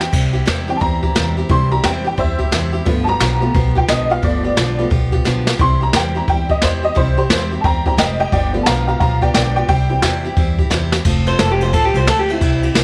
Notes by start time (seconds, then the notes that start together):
Already playing: G5
0.00 C4 E4 G4, snare
0.12 C2 C3 G3 C4 E4 G4, kick, crash
0.33 C4 E4 G4
0.46 E2 C3 G3 C4 E4 G4, snare
0.68 E3 G3 C4 E4 G4 G5
0.76 G3 A5
0.81 E2 C4 E4 G4 A#5, kick, open hi-hat
1.02 C4 E4 G4, kick
1.15 E2 C3 G3 C4 E4 G4, snare, open hi-hat
1.37 C4 E4 G4
1.49 C2 C3 E3 G3 C4 E4 G4 C6, kick, open hi-hat
1.71 C4 E4 G4 A#5
1.83 E2 C3 G3 C4 E4 G4 G5, snare, open hi-hat
2.05 C4 E4 G4 G5
2.17 E2 G3 C4 E4 G4 C5 E5, kick, open hi-hat
2.39 C4 E4 G4, kick
2.51 E2 C3 G3 C4 E4 G4, snare, open hi-hat
2.73 C4 E4 G4
2.85 G1 G2 D3 F3 A3 B3 F4 G4, kick, open hi-hat
3.04 F4 G4 A5
3.08 F3 B3 A#5
3.20 B1 G2 D3 F3 B3 F4 G4, snare, open hi-hat
3.41 F3 A3 B3 F4 G4
3.54 B1 F3 B3 F4 G4, kick, open hi-hat
3.75 F3 B3 F4 G4 G5, kick
3.88 B1 G2 D3 F3 B3 F4 G4 D#5, snare, open hi-hat
4.10 F3 B3 F4 G4 F5
4.22 G1 G2 D3 F3 A3 B3 F4 G4 D5, kick, open hi-hat
4.44 F3 B3 F4 G4
4.56 B1 G2 D3 F3 B3 F4 G4, snare, open hi-hat
4.79 F3 A3 B3 F4 G4
4.90 B1 F3 B3 F4 G4, kick, open hi-hat
5.12 F3 B3 F4 G4, kick
5.25 B1 G2 D3 F3 B3 F4 G4, snare
5.47 F3 B3 F4 G4, snare
5.59 C2 C3 E3 G3 C4 E4 G4 C6, kick, open hi-hat
5.81 C4 E4 G4 A#5
5.93 E2 C3 G3 C4 E4 G4 G5, snare
6.15 C4 E4 G4 A#5
6.28 E2 G3 C4 E4 G4 G5, kick, open hi-hat
6.49 C4 E4 G4 D#5, kick
6.62 E2 C3 G3 C4 E4 G4 C5, snare, open hi-hat
6.83 C4 E4 G4 D#5
6.95 C2 C3 E3 G3 C4 E4 G4 C5, kick, open hi-hat
7.17 C4 E4 G4 C5
7.30 E2 C3 G3 C4 E4 G4, snare
7.51 C4 E4 G4
7.61 E2 G3 G5 A5, kick, open hi-hat
7.65 C4 E4 G4 A#5
7.86 E3 G3 C4 E4 G4 G5 A#5, kick
7.97 F1 C3 G3 C4 E4 G4 D#5 G5, snare, open hi-hat
8.19 C4 E4 G4 D#5 G5
8.32 G1 G2 D3 F3 B3 F4 G4 D5 G5, kick, open hi-hat
8.53 F3 A3 B3 F4 G4
8.63 B1 F5 A5, snare, open hi-hat
8.67 G2 D3 F3 B3 F4 G4 A#5
8.88 F3 B3 F4 G4 F5 A#5
9.00 B1 F3 B3 F4 G4 F5 A#5, kick, open hi-hat
9.22 F3 B3 F4 G4 D5 G5, kick
9.34 B1 G2 D3 F3 B3 F4 G4 D5 G5, snare
9.55 F3 B3 F4 G4 D5 G5
9.68 C2 C3 G3 C4 E4 G4 G5, kick, open hi-hat
9.89 E3 G3 C4 E4 G4
10.02 E2 C3 G3 C4 E4 G4, snare, open hi-hat
10.24 C4 E4 G4
10.36 E2 G3 C4 E4 G4, kick, open hi-hat
10.59 C4 E4 G4, kick
10.70 E2 C3 G3 C4 E4 G4, snare
10.92 C4 E4 G4, snare
11.05 F1 F3 C4 F4 A4, kick, crash
11.26 C4 F4 A4 C5, ride
11.39 F1 F3 C4 F4 A4, snare, ride
11.52 G4
11.60 C4 F4 A4 C5, ride
11.73 A1 F3 C4 F4 A4, kick, ride
11.85 G4
11.94 C2 C4 F4 A4 C5, ride
12.07 D2 F3 C4 F4 A4, snare, ride
12.19 G4
12.28 C4 E4 F4 A4, ride
12.41 C2 C3 G3 C4 E4 G4, kick, ride
12.62 C4 E4 G4, ride
12.74 C2 G3 C4 E4 G4, snare, ride